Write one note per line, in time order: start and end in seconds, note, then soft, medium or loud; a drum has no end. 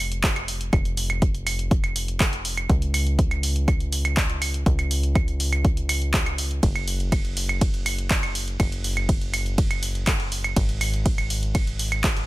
0.00 0.70 F1 medium
0.12 closed hi-hat soft
0.24 kick loud
0.24 clap loud
0.24 closed hi-hat medium
0.36 closed hi-hat soft
0.36 claves medium
0.48 open hi-hat medium
0.61 closed hi-hat soft
0.73 2.67 F1 medium
0.73 kick loud
0.73 closed hi-hat medium
0.73 claves medium
0.85 closed hi-hat soft
0.97 open hi-hat loud
1.10 closed hi-hat soft
1.10 claves soft
1.22 kick loud
1.22 closed hi-hat medium
1.34 closed hi-hat soft
1.47 open hi-hat loud
1.47 claves medium
1.59 closed hi-hat soft
1.71 kick loud
1.71 closed hi-hat medium
1.84 closed hi-hat soft
1.84 claves medium
1.96 open hi-hat loud
2.08 closed hi-hat soft
2.20 kick loud
2.20 clap loud
2.20 closed hi-hat medium
2.20 claves medium
2.33 closed hi-hat soft
2.45 open hi-hat medium
2.57 closed hi-hat soft
2.57 claves medium
2.69 4.64 C#2 medium
2.69 kick loud
2.69 closed hi-hat medium
2.82 closed hi-hat soft
2.94 open hi-hat loud
2.94 claves soft
3.07 closed hi-hat soft
3.19 kick loud
3.19 closed hi-hat medium
3.31 closed hi-hat soft
3.31 claves medium
3.43 open hi-hat loud
3.56 closed hi-hat soft
3.68 kick loud
3.68 closed hi-hat medium
3.68 claves soft
3.80 closed hi-hat soft
3.92 open hi-hat loud
4.05 closed hi-hat soft
4.05 claves medium
4.17 kick loud
4.17 clap loud
4.17 closed hi-hat medium
4.30 closed hi-hat soft
4.42 open hi-hat loud
4.42 claves medium
4.54 closed hi-hat soft
4.66 6.61 C#2 medium
4.66 kick loud
4.66 closed hi-hat medium
4.79 closed hi-hat soft
4.79 claves medium
4.91 open hi-hat loud
5.03 closed hi-hat soft
5.15 kick loud
5.15 closed hi-hat medium
5.15 claves medium
5.28 closed hi-hat soft
5.40 open hi-hat loud
5.53 closed hi-hat soft
5.53 claves medium
5.65 kick loud
5.65 closed hi-hat medium
5.77 closed hi-hat soft
5.89 open hi-hat loud
5.89 claves medium
6.02 closed hi-hat soft
6.14 kick loud
6.14 clap loud
6.14 closed hi-hat medium
6.26 closed hi-hat soft
6.26 claves medium
6.38 open hi-hat loud
6.51 closed hi-hat soft
6.63 8.57 F#1 medium
6.63 kick loud
6.63 closed hi-hat medium
6.63 ride medium
6.75 closed hi-hat soft
6.75 claves medium
6.88 open hi-hat loud
7.00 closed hi-hat soft
7.12 kick loud
7.12 closed hi-hat medium
7.12 ride medium
7.12 claves medium
7.25 closed hi-hat soft
7.37 open hi-hat loud
7.49 closed hi-hat soft
7.49 claves medium
7.61 kick loud
7.61 closed hi-hat medium
7.61 ride medium
7.74 closed hi-hat soft
7.86 open hi-hat loud
7.86 claves medium
7.98 closed hi-hat soft
8.11 kick loud
8.11 clap loud
8.11 closed hi-hat medium
8.11 ride medium
8.23 closed hi-hat soft
8.23 claves medium
8.35 open hi-hat loud
8.48 closed hi-hat soft
8.60 10.54 F#1 medium
8.60 kick loud
8.60 closed hi-hat medium
8.60 ride medium
8.60 claves medium
8.72 closed hi-hat soft
8.84 open hi-hat loud
8.97 closed hi-hat soft
8.97 claves medium
9.09 kick loud
9.09 closed hi-hat medium
9.09 ride medium
9.21 closed hi-hat soft
9.34 open hi-hat medium
9.34 claves medium
9.46 closed hi-hat soft
9.58 kick loud
9.58 closed hi-hat medium
9.58 ride medium
9.71 closed hi-hat soft
9.71 claves medium
9.83 open hi-hat loud
9.95 closed hi-hat soft
10.07 kick loud
10.07 clap loud
10.07 closed hi-hat medium
10.07 ride medium
10.07 claves medium
10.20 closed hi-hat soft
10.32 open hi-hat medium
10.44 closed hi-hat soft
10.44 claves medium
10.56 12.27 G#1 medium
10.56 kick loud
10.56 closed hi-hat medium
10.56 ride medium
10.69 closed hi-hat soft
10.81 open hi-hat loud
10.81 claves medium
10.94 closed hi-hat soft
11.06 kick loud
11.06 closed hi-hat medium
11.06 ride medium
11.18 closed hi-hat soft
11.18 claves medium
11.30 open hi-hat medium
11.43 closed hi-hat soft
11.55 kick loud
11.55 closed hi-hat medium
11.55 ride medium
11.55 claves medium
11.67 closed hi-hat soft
11.79 open hi-hat loud
11.92 closed hi-hat soft
11.92 claves medium
12.04 kick loud
12.04 clap loud
12.04 closed hi-hat medium
12.04 ride medium
12.17 closed hi-hat soft